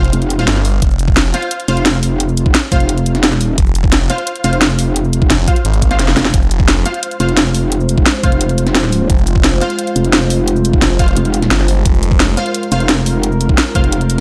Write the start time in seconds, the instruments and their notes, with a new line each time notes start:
Already playing: detuned saw bass F1
0.04 closed hi-hat
0.13 wobble bass F1, closed hi-hat
0.22 closed hi-hat, shaker
0.30 closed hi-hat, shaker
0.39 synth stab F4 C5 F5, snare, closed hi-hat
0.48 detuned saw bass G1, snare, closed hi-hat
0.56 snare, shaker
0.65 open hi-hat, shaker
0.82 detuned saw bass F1, kick, closed hi-hat
0.91 shaker
0.99 closed hi-hat, shaker
1.08 kick
1.17 snare, closed hi-hat
1.34 synth stab F4 C5 F5, snare, closed hi-hat, shaker
1.42 closed hi-hat
1.51 closed hi-hat
1.60 closed hi-hat, shaker
1.68 wobble bass F1, synth stab F4 C5 F5, closed hi-hat, shaker
1.77 closed hi-hat
1.86 snare, closed hi-hat
1.94 shaker
2.03 open hi-hat, shaker
2.20 closed hi-hat
2.29 shaker
2.37 closed hi-hat, shaker
2.46 kick
2.55 snare, closed hi-hat
2.72 wobble bass F1, synth stab F4 C5 F5, kick, closed hi-hat, shaker
2.80 closed hi-hat
2.89 closed hi-hat
2.98 closed hi-hat, shaker
3.06 closed hi-hat, shaker
3.15 snare, closed hi-hat
3.23 snare, closed hi-hat
3.32 wobble bass E1, snare, shaker
3.41 open hi-hat, shaker
3.58 detuned saw bass F1, kick, closed hi-hat
3.67 shaker
3.75 closed hi-hat, shaker
3.84 kick
3.92 snare, closed hi-hat
4.10 synth stab F4 C5 F5, snare, closed hi-hat, shaker
4.18 closed hi-hat
4.27 closed hi-hat
4.36 closed hi-hat, shaker
4.44 wobble bass F1, synth stab F4 C5 F5, closed hi-hat, shaker
4.53 closed hi-hat
4.61 snare, closed hi-hat
4.70 shaker
4.79 open hi-hat, shaker
4.96 closed hi-hat
5.05 shaker
5.13 closed hi-hat, shaker
5.22 kick
5.30 detuned saw bass F1, snare, closed hi-hat
5.39 shaker
5.48 synth stab F4 C5 F5, kick, closed hi-hat, shaker
5.56 closed hi-hat
5.65 detuned saw bass G#1, closed hi-hat
5.74 closed hi-hat, shaker
5.82 kick, closed hi-hat, shaker
5.91 synth stab F4 C5 F5, snare, closed hi-hat
5.99 detuned saw bass F1, snare, closed hi-hat
6.08 snare, shaker
6.17 wobble bass F1, snare, open hi-hat, shaker
6.25 snare
6.34 detuned saw bass F1, analog synth pad G#3 F4 C5, kick, closed hi-hat
6.42 shaker
6.51 closed hi-hat, shaker
6.60 kick
6.68 snare, closed hi-hat
6.86 synth stab F4 C5 F5, snare, closed hi-hat, shaker
6.94 closed hi-hat
7.03 closed hi-hat
7.11 closed hi-hat, shaker
7.20 wobble bass F1, synth stab F4 C5 F5, closed hi-hat, shaker
7.29 closed hi-hat
7.37 snare, closed hi-hat
7.46 shaker
7.55 open hi-hat, shaker
7.72 closed hi-hat
7.80 shaker
7.89 closed hi-hat, shaker
7.98 kick
8.06 snare, closed hi-hat
8.23 wobble bass F1, synth stab F4 C5 F5, kick, closed hi-hat, shaker
8.32 closed hi-hat
8.41 closed hi-hat
8.49 closed hi-hat, shaker
8.58 closed hi-hat, shaker
8.67 snare, closed hi-hat
8.75 snare, closed hi-hat
8.84 snare, shaker
8.92 open hi-hat, shaker
9.10 detuned saw bass F1, kick, closed hi-hat
9.18 shaker
9.27 closed hi-hat, shaker
9.36 kick
9.44 snare, closed hi-hat
9.61 synth stab F4 C5 F5, snare, closed hi-hat, shaker
9.70 closed hi-hat
9.79 closed hi-hat
9.87 closed hi-hat, shaker
9.96 wobble bass F1, closed hi-hat, shaker
10.05 closed hi-hat
10.13 snare, closed hi-hat
10.22 shaker
10.30 open hi-hat, shaker
10.48 closed hi-hat
10.56 shaker
10.65 closed hi-hat, shaker
10.73 kick
10.82 detuned saw bass F1, snare, closed hi-hat
10.99 synth stab F4 C5 F5, kick, closed hi-hat, shaker
11.08 closed hi-hat
11.17 wobble bass F1, closed hi-hat
11.25 closed hi-hat, shaker
11.34 closed hi-hat, shaker
11.42 snare, closed hi-hat
11.51 detuned saw bass G1, snare, closed hi-hat
11.60 snare, shaker
11.68 open hi-hat, shaker
11.86 detuned saw bass F1, analog synth pad A#4, kick, closed hi-hat
11.94 shaker
12.03 closed hi-hat, shaker
12.11 kick
12.20 snare, closed hi-hat
12.37 synth stab F4 C5 F5, snare, closed hi-hat, shaker
12.46 closed hi-hat
12.54 closed hi-hat
12.63 closed hi-hat, shaker
12.72 wobble bass F1, synth stab F4 C5 F5, closed hi-hat, shaker
12.80 closed hi-hat
12.89 snare, closed hi-hat
12.98 shaker
13.06 open hi-hat, shaker
13.23 closed hi-hat
13.32 shaker
13.41 closed hi-hat, shaker
13.49 kick
13.58 snare, closed hi-hat
13.75 wobble bass F1, synth stab F4 C5 F5, kick, closed hi-hat, shaker
13.84 closed hi-hat
13.92 closed hi-hat
14.01 closed hi-hat, shaker
14.10 closed hi-hat, shaker